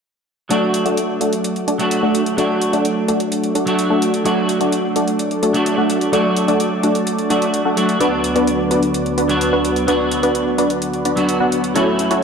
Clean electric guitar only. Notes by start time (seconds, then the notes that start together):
0.49 F#3 A3 D4 F#4
1.78 F#3 A3 D4 F#4
2.37 F#3 A3 D4 F#4
3.66 F#3 A3 D4 F#4
4.24 F#3 A3 D4 F#4
5.53 F#3 A3 D4 F#4
6.12 F#3 A3 D4 F#4
7.30 F#3 A3 D4 F#4
7.77 F#3 A3 D4 F#4
7.99 F#3 B3 D4 F#4
9.28 F#3 B3 D4 F#4
9.87 F#3 B3 D4 F#4
11.16 F#3 B3 D4 F#4
11.74 F#3 A3 C#4 E4